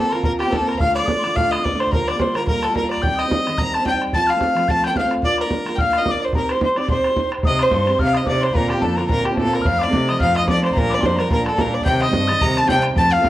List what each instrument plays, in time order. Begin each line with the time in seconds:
Already playing: steel-string acoustic guitar A#3 C4 F4, fiddle A4, tin whistle A5
0.10 steel-string acoustic guitar D3 A#3, fiddle A#4, tin whistle A#5 C6, bodhran
0.14 steel-string acoustic guitar C4 F4
0.23 steel-string acoustic guitar D3 A#3 C4 F4, fiddle A#4, tin whistle A#5, bodhran
0.39 fiddle G4, tin whistle G5, bodhran
0.44 steel-string acoustic guitar A#3 C4 F4
0.50 fiddle A4 A#4, tin whistle A5, bodhran
0.58 steel-string acoustic guitar A#3 C4 F4, bodhran
0.67 fiddle A#4, tin whistle A#5, bodhran
0.75 steel-string acoustic guitar D3, bodhran
0.79 steel-string acoustic guitar A3 D4 F4, fiddle F5, tin whistle F6, bodhran
0.95 fiddle D5, tin whistle D6, bodhran
1.02 steel-string acoustic guitar D3 A3 D4 F4
1.06 tin whistle D#6, bodhran
1.18 tin whistle C6
1.23 steel-string acoustic guitar D3 A3 D4 F4, tin whistle D6, bodhran
1.34 steel-string acoustic guitar D3 A3 D4 F4, fiddle F5, tin whistle F6, bodhran
1.51 fiddle D#5, tin whistle D#6, bodhran
1.58 steel-string acoustic guitar D3 A3 D4 F4
1.63 fiddle D5, tin whistle D6, bodhran
1.72 steel-string acoustic guitar D3 A3 D4 F4, bodhran
1.79 fiddle C5, tin whistle C6, bodhran
1.87 bodhran
1.91 steel-string acoustic guitar D3 G3 A#3 F4, fiddle A#4, tin whistle A#5, bodhran
2.07 fiddle D5, tin whistle D6, bodhran
2.13 steel-string acoustic guitar G3 A#3 F4
2.19 fiddle C5, tin whistle C6, bodhran
2.34 steel-string acoustic guitar D3 G3 A#3 F4, fiddle A#4, tin whistle A#5, bodhran
2.46 steel-string acoustic guitar D3 G3 A#3 F4, fiddle A#4, tin whistle A#5, bodhran
2.62 fiddle A4, tin whistle A5, bodhran
2.70 steel-string acoustic guitar G3 A#3 F4
2.75 fiddle A#4, tin whistle A#5, bodhran
2.83 steel-string acoustic guitar G3 A#3 F4, bodhran
2.90 fiddle D5, bodhran
2.97 bodhran
3.02 steel-string acoustic guitar D#3 G3, fiddle G5, tin whistle G6, bodhran
3.06 steel-string acoustic guitar C4 D#4
3.17 fiddle D#5, tin whistle D#6, bodhran
3.25 steel-string acoustic guitar G3 C4 D#4
3.31 bodhran
3.47 steel-string acoustic guitar D#3 G3 C4 D#4, bodhran
3.58 steel-string acoustic guitar D#3 G3 C4 D#4, fiddle A#5, tin whistle A#6, bodhran
3.73 fiddle A5, tin whistle A6, bodhran
3.79 steel-string acoustic guitar G3 C4 D#4
3.86 fiddle G5, tin whistle G6, bodhran
3.92 steel-string acoustic guitar G3 C4 D#4, bodhran
4.02 bodhran
4.08 bodhran
4.13 steel-string acoustic guitar F3 A3 C4 F4, fiddle A5, tin whistle A6, bodhran
4.27 fiddle F5, tin whistle F6, bodhran
4.34 steel-string acoustic guitar A3 C4 F4
4.41 bodhran
4.55 steel-string acoustic guitar F3 A3 C4 F4, bodhran
4.67 steel-string acoustic guitar F3 A3 C4 F4, fiddle A5, tin whistle A6, bodhran
4.84 fiddle G5, tin whistle G6, bodhran
4.89 steel-string acoustic guitar A3 C4 F4
4.96 fiddle F5, tin whistle F6, bodhran
5.02 steel-string acoustic guitar A3 C4 F4, bodhran
5.11 bodhran
5.17 bodhran
5.22 steel-string acoustic guitar A#3 D4 F4 A#4, fiddle D5, bodhran
5.26 tin whistle D6
5.38 fiddle A#4, bodhran
5.46 steel-string acoustic guitar D4 F4 A#4
5.51 bodhran
5.65 steel-string acoustic guitar A#3 D4 F4 A#4, bodhran
5.76 steel-string acoustic guitar A#3 D4 F4, fiddle G5, tin whistle F6, bodhran
5.81 steel-string acoustic guitar A#4, fiddle F5
5.93 bodhran
5.98 steel-string acoustic guitar F4 A#4, fiddle D#5
6.03 steel-string acoustic guitar D4, bodhran
6.08 steel-string acoustic guitar A#4, fiddle D5, tin whistle D6
6.14 steel-string acoustic guitar D4 F4, bodhran
6.21 fiddle C5 D5, tin whistle D6
6.28 steel-string acoustic guitar C4, bodhran
6.33 steel-string acoustic guitar D#4 G4 C5, fiddle A#4, tin whistle A#5, bodhran
6.49 fiddle C5, tin whistle C6, bodhran
6.53 steel-string acoustic guitar D#4 G4 C5
6.61 fiddle C5, tin whistle C6, bodhran
6.76 steel-string acoustic guitar C4 D#4 G4 C5, fiddle D5, tin whistle D6, bodhran
6.88 steel-string acoustic guitar C4 D#4 G4 C5, fiddle C5, tin whistle C6, bodhran
7.04 bodhran
7.10 steel-string acoustic guitar D#4 G4 C5
7.16 bodhran
7.23 steel-string acoustic guitar D#4 G4 C5, bodhran
7.32 bodhran
7.38 bodhran
7.43 cello C3, steel-string acoustic guitar C4 D#4 G4 C5, fiddle D#5, tin whistle D#6, bodhran
7.59 fiddle C5, tin whistle C6, bodhran
7.65 steel-string acoustic guitar D#4 G4 C5
7.71 cello G2, bodhran
7.86 steel-string acoustic guitar C4 D#4 G4 C5, bodhran
7.99 cello C3, steel-string acoustic guitar C4 D#4 G4 C5, fiddle F5, tin whistle F6, bodhran
8.13 fiddle D#5, tin whistle D#6, bodhran
8.21 steel-string acoustic guitar D#4 G4 C5, tin whistle D6
8.26 cello C3, fiddle D5, bodhran
8.34 steel-string acoustic guitar D#4 G4 C5, bodhran
8.41 fiddle C5, tin whistle C6, bodhran
8.50 tin whistle A#5, bodhran
8.55 cello A#2, steel-string acoustic guitar D3 A#3 C4 F4, fiddle A#4, bodhran
8.70 fiddle G4, tin whistle G5, bodhran
8.76 steel-string acoustic guitar A#3 C4 F4, tin whistle A5
8.82 cello F2, fiddle A4, bodhran
8.96 steel-string acoustic guitar D3 A#3 C4 F4, fiddle A#4, tin whistle A#5, bodhran
9.08 cello A#2, steel-string acoustic guitar D3 A#3 C4 F4, fiddle A#4, tin whistle A#5, bodhran
9.24 fiddle G4, tin whistle G5, bodhran
9.30 steel-string acoustic guitar A#3 C4 F4
9.35 cello A#2, fiddle A4, tin whistle A5, bodhran
9.45 steel-string acoustic guitar A#3 C4 F4, bodhran
9.51 fiddle A#4, tin whistle A#5, bodhran
9.60 tin whistle F6, bodhran
9.65 cello F2, steel-string acoustic guitar F3 A3 C4 D#4, fiddle F5, bodhran
9.79 tin whistle D6, bodhran
9.83 steel-string acoustic guitar D#4, fiddle D5
9.89 cello C3, steel-string acoustic guitar A3 C4
9.93 tin whistle D6, bodhran
10.09 steel-string acoustic guitar F3 A3 C4, fiddle D#5, tin whistle D#6, bodhran
10.13 steel-string acoustic guitar D#4
10.19 cello F2, steel-string acoustic guitar F3, fiddle F5, tin whistle F6, bodhran
10.24 steel-string acoustic guitar A3 C4 D#4
10.36 fiddle D#5, tin whistle D#6, bodhran
10.44 steel-string acoustic guitar A3 C4 D#4, tin whistle D6
10.48 cello F3, fiddle D5, bodhran
10.57 steel-string acoustic guitar C4 D#4, bodhran
10.62 steel-string acoustic guitar A3, fiddle C5, tin whistle C6, bodhran
10.71 tin whistle A#5, bodhran
10.76 cello A#2, steel-string acoustic guitar F3 G3 A#3, fiddle A#4, bodhran
10.81 steel-string acoustic guitar D4
10.90 tin whistle D6, bodhran
10.94 fiddle D5
10.98 steel-string acoustic guitar G3 A#3 D4, tin whistle C6
11.03 cello F2, fiddle C5, bodhran
11.16 steel-string acoustic guitar F3 G3, fiddle A#4, tin whistle A#5, bodhran
11.21 steel-string acoustic guitar A#3 D4
11.30 cello A#2, steel-string acoustic guitar F3 G3 A#3 D4, fiddle A#4, tin whistle A#5, bodhran
11.45 fiddle A4, tin whistle A5, bodhran
11.52 steel-string acoustic guitar G3 A#3 D4
11.57 cello A#2, fiddle A#4, tin whistle A#5, bodhran
11.65 steel-string acoustic guitar G3 A#3 D4, bodhran
11.74 fiddle D5, tin whistle D6
11.80 fiddle G5, bodhran
11.84 cello C3, steel-string acoustic guitar D#3 G3 C4 D#4, tin whistle G6, bodhran
12.01 fiddle D#5, tin whistle D#6, bodhran
12.07 steel-string acoustic guitar G3 C4 D#4
12.13 cello G2, bodhran
12.28 steel-string acoustic guitar D#3 G3 C4, tin whistle A6, bodhran
12.32 steel-string acoustic guitar D#4
12.40 cello C3, steel-string acoustic guitar D#3 G3 C4 D#4, fiddle A#5, tin whistle A#6, bodhran
12.57 fiddle A5, tin whistle A6, bodhran
12.63 steel-string acoustic guitar G3 C4 D#4
12.68 cello C3, fiddle G5, tin whistle G6, bodhran
12.75 steel-string acoustic guitar G3 C4 D#4, bodhran
12.83 bodhran
12.90 bodhran
12.95 cello F2, steel-string acoustic guitar F3 A3 C4 F4, fiddle A5, tin whistle A6, bodhran
13.13 fiddle F5, tin whistle F6
13.18 steel-string acoustic guitar A3 C4 F4
13.23 cello C3, bodhran